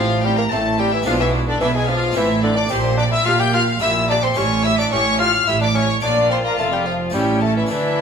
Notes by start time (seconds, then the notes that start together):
Already playing: A1 A2 F3 A3 C4 E4 F4 F5
0.24 G3 C4 G4 G5
0.38 A#3 A#4 A#5
0.51 A1 A2 A3 C4 A4 A5
0.78 G3 C4 G4 G5
0.93 E3 E4 E5
1.02 B1 B2 G#3 D4 E4 F4
1.06 B2 F3 F5
1.20 E3 E4 E5
1.33 D4
1.47 D3 D4 D5
1.60 B1 B2 E3 D4 E4 E5
1.74 G#3 G#4 G#5
1.88 F3 D4 F4 F5
2.12 A3 C4 E4
2.16 A1 A2 E3 C4 E5
2.43 D3 C4 D4 D5
2.56 D4 D5 D6
2.68 A#1 A#2 C4 D4 G4 C5 C6
2.97 D4 G4 D5 D6
3.11 E4 E5 E6
3.25 A#1 A#2 F4 G4 F5 F6
3.40 G4 G5 G6
3.54 F4 G4 F5 F6
3.79 A#1 A#2 D4 E4 G4 E5 E6
4.09 D4 G4 D5 D6
4.23 C4 C5 C6
4.34 A1 A2 C#4 E4 G4 A4 C#5 C#6
4.64 E4 G4 E5 E6
4.78 D4 D5 D6
4.92 A1 A2 C#4 G4 C#5 C#6
5.20 F4 G4 F5 F6
5.47 A1 A2 E4 G4 E5 E6
5.61 D4 D5 D6
5.74 C#4 G4 C#5 C#6
6.00 A#1 A#2 D4 F4 D5 D6
6.30 C4 C5 C6
6.45 A#3 A#4 A#5
6.58 F1 F2 A3 A4 A5
6.72 G3 G4 G5
6.85 F3 F4 F5
7.10 G3 A3 C#4 E4 G5
7.14 A1 A2 C#4 G4
7.42 A3 A4 A5
7.56 E3 E4 E5
7.66 A3 D4 E5
7.70 D2 D3 E3 D4 E4